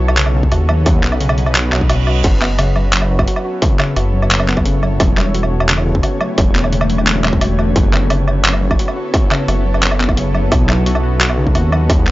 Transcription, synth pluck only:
0.00 F#4
0.17 C#3
0.35 C#3
0.52 F#4
0.69 F#3
0.87 F#3
1.04 B3
1.21 C#3
1.38 F#3
1.55 F#3
1.72 F#3
1.90 F#4
2.07 F#4
2.24 F#3
2.41 B3
2.59 C#3
2.76 F#3
2.93 F#3
3.11 F#3
3.28 F#4
3.45 F#4
3.62 C#3
3.79 C#3
3.97 F#4
4.14 F#3
4.31 F#3
4.48 B3
4.66 C#3
4.83 F#3
5.00 F#3
5.18 G3
5.34 F#4
5.52 F#4
5.69 C#3
5.86 C#3
6.03 F#4
6.21 F#3
6.38 F#3
6.55 B3
6.72 C#3
6.89 F#3
7.07 F#3
7.24 G3
7.41 F#4
7.58 F#4
7.76 F#3
7.93 B3
8.10 C#3
8.28 F#3
8.45 F#3
8.62 F#3
8.79 F#4
8.96 F#4
9.14 F#4
9.31 C#3
9.48 F#4
9.65 F#3
9.82 F#3
10.00 B3
10.17 C#3
10.35 F#3
10.52 F#3
10.69 F#3
10.86 F#4
11.03 F#4
11.21 F#4
11.37 C#3
11.55 F#4
11.72 F#3
11.89 F#3
12.07 B3

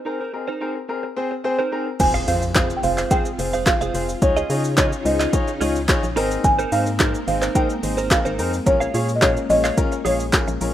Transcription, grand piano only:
0.06 C4 G#4 A#4
0.33 C4 G#4 A#4
0.61 C4 G#4 A#4
0.89 C4 G#4 A#4
1.16 C4 G#4 C5
1.44 C4 G#4 C5
1.72 C4 G#4 A#4
2.00 C4 F4 G#4 C5
2.27 C4 F4 G#4 C5
2.55 C4 F4 G#4 C5
2.83 C4 F4 G#4 C5
3.11 C4 F4 G#4 C5
3.39 C4 F4 G#4 C5
3.66 C4 F4 G#4 C5
3.94 C4 F4 G#4 C5
4.22 D#4 F4 G#4 C#5
4.50 D#4 F4 G#4 C#5
4.77 D#4 F4 G#4 C#5
5.05 D#4 F4 G#4 C5
5.33 D#4 F4 G#4 C#5
5.61 D#4 F4 G#4 C#5
5.89 D#4 F4 G#4 C#5
6.16 C4 D#4 G#4 A#4
6.72 C4 D#4 G#4 A#4
7.00 C4 D#4 G#4 A#4
7.27 C4 D#4 G#4 C5
7.55 C4 D#4 G#4 A#4
7.83 C4 D#4 G#4 C5
8.11 C4 D#4 G#4 A#4
8.38 C4 D#4 G#4 A#4
8.66 C#4 F4 G#4 A#4
8.94 C#4 F4 G#4 C#5
9.22 C#4 F4 G#4 A#4
9.50 C#4 F4 G#4 C#5
9.77 C#4 F4 G#4 A#4
10.05 C#4 F4 G#4 C#5
10.33 C#4 F4 G#4 A#4
10.61 C#4 F4 G#4 A#4

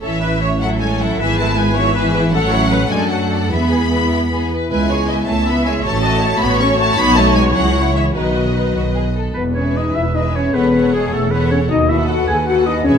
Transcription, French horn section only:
0.05 C#4 E4
1.21 B3
2.33 A3 C#4
2.89 D4
3.50 G#3 E4
4.71 B3
5.85 A3 F#4
6.96 F#3 D#4
7.54 G#3 E4
8.15 F#3 F#4
9.35 B3
9.57 C#4
9.77 D#4
9.96 E4
10.15 D#4
10.35 C#4
10.55 B3
10.96 G#3
11.14 A3
11.33 B3
11.52 C#4
11.70 D#4
11.90 E4
12.10 F#4
12.30 G#4
12.47 F#4
12.68 D#4
12.85 C#4

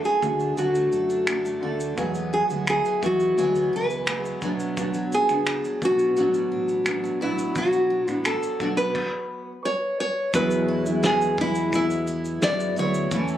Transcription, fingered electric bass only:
0.22 D2
0.58 D2
0.93 F#2
1.63 D2
1.98 E2
2.51 D2
3.03 E2
3.39 D2
3.74 C#2
4.42 B1
5.30 C#2
5.82 B1
6.17 A1
6.53 A1
7.22 A1
7.56 B1
8.08 A1
8.60 B1
10.34 E2
12.43 F#2
12.78 D2
13.12 E2

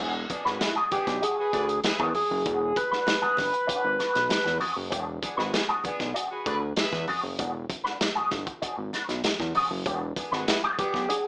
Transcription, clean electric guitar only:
0.00 D4 F#4 G#4
0.15 muted clean electric guitar stroke
0.30 muted clean electric guitar stroke
0.45 D4 F#4 B4
0.60 muted clean electric guitar stroke
0.76 D4 F#4 G#4
1.07 muted clean electric guitar stroke
1.22 D4 F#4 G#4
1.38 muted clean electric guitar stroke
1.53 D4 F#4 B4
1.69 muted clean electric guitar stroke
1.84 muted clean electric guitar stroke
1.99 D4 F#4 G#4
2.30 muted clean electric guitar stroke
2.46 D4 F#4 G#4
2.61 muted clean electric guitar stroke
2.75 muted clean electric guitar stroke
2.91 D4 F#4 B4
3.22 D4 F#4 G#4
3.53 muted clean electric guitar stroke
3.67 D4 F#4 G#4
3.83 muted clean electric guitar stroke
3.98 D4 F#4 B4
4.13 muted clean electric guitar stroke
4.29 muted clean electric guitar stroke
4.44 muted clean electric guitar stroke
4.60 D4 F#4 G#4
4.76 muted clean electric guitar stroke
4.90 D4 F#4 G#4
5.23 muted clean electric guitar stroke
5.37 D4 F#4 B4
5.53 muted clean electric guitar stroke
5.69 D4 F#4 G#4
5.84 muted clean electric guitar stroke
5.99 muted clean electric guitar stroke
6.14 D4 F#4 G#4
6.30 muted clean electric guitar stroke
6.46 D4 F#4 B4
6.61 muted clean electric guitar stroke
6.76 muted clean electric guitar stroke
6.92 muted clean electric guitar stroke
7.07 D4 F#4 G#4
7.24 muted clean electric guitar stroke
7.39 D4 F#4 G#4
7.53 muted clean electric guitar stroke
7.69 muted clean electric guitar stroke
7.84 D4 F#4 B4
8.00 muted clean electric guitar stroke
8.15 D4 F#4 G#4
8.31 muted clean electric guitar stroke
8.46 muted clean electric guitar stroke
8.62 D4 F#4 G#4
8.78 muted clean electric guitar stroke
8.93 D4 F#4 B4
9.09 muted clean electric guitar stroke
9.24 muted clean electric guitar stroke
9.40 muted clean electric guitar stroke
9.55 D4 F#4 G#4
9.70 muted clean electric guitar stroke
9.86 D4 F#4 G#4
10.01 muted clean electric guitar stroke
10.17 muted clean electric guitar stroke
10.31 D4 F#4 B4
10.48 muted clean electric guitar stroke
10.64 D4 F#4 G#4
10.94 muted clean electric guitar stroke
11.09 D4 F#4 G#4

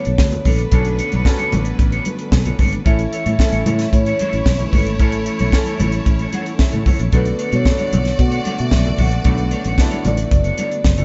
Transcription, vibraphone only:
Already playing: C#5
0.47 A4
2.87 E5
3.26 E5
3.93 C#5
4.67 B4
4.74 A4
7.14 B4
7.54 C#5
8.21 F#5
8.60 E5
9.01 F#5
10.07 D5
10.33 D5
10.60 D5

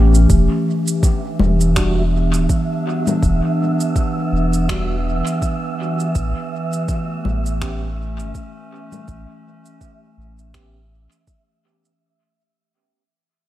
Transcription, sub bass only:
Already playing: A1
0.30 E1
1.39 E1
2.34 D1
3.23 E1
4.32 E1
6.15 A1
7.25 A1
8.19 G1
9.08 A1
10.18 A1

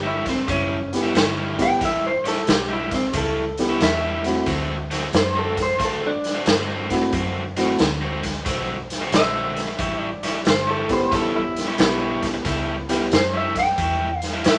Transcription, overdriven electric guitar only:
0.03 A2 G3 C#4 E4
0.25 muted overdriven electric guitar stroke
0.48 A2 G3 C#4 E4
1.03 A2 G3 C#4 E4
1.14 A2 G3 C#4 E4
1.35 A2 G3 C#4 E4
1.69 muted overdriven electric guitar stroke
1.80 A2 G3 C#4 E4
2.24 A2 G3 C#4 E4
2.69 A2 G3 C#4 E4
2.92 muted overdriven electric guitar stroke
3.14 A2 G3 C#4 E4
3.69 A2 G3 C#4 E4
3.80 A2 G3 C#4 E4
4.01 A2 G3 C#4 E4
4.35 muted overdriven electric guitar stroke
4.47 D3 A3 C4 F#4
4.90 D3 A3 C4 F#4
5.35 D3 A3 C4 F#4
5.57 muted overdriven electric guitar stroke
5.79 D3 A3 C4 F#4
6.35 D3 A3 C4 F#4
6.46 D3 A3 C4 F#4
6.68 D3 A3 C4 F#4
7.02 muted overdriven electric guitar stroke
7.13 D3 A3 C4 F#4
7.57 D3 A3 C4 F#4
8.01 D3 A3 C4 F#4
8.23 muted overdriven electric guitar stroke
8.45 D3 A3 C4 F#4
9.01 D3 A3 C4 F#4
9.12 D3 A3 C4 F#4
9.34 D3 A3 C4 F#4
9.67 muted overdriven electric guitar stroke
9.79 A2 G3 C#4 E4
10.23 A2 G3 C#4 E4
10.67 A2 G3 C#4 E4
10.90 muted overdriven electric guitar stroke
11.11 A2 G3 C#4 E4
11.67 A2 G3 C#4 E4
11.78 A2 G3 C#4 E4
12.00 A2 G3 C#4 E4
12.34 muted overdriven electric guitar stroke
12.45 A2 G3 C#4 E4
12.89 A2 G3 C#4 E4
13.34 A2 G3 C#4 E4
13.56 muted overdriven electric guitar stroke
13.78 A2 G3 C#4 E4
14.34 A2 G3 C#4 E4
14.45 A2 G3 C#4 E4

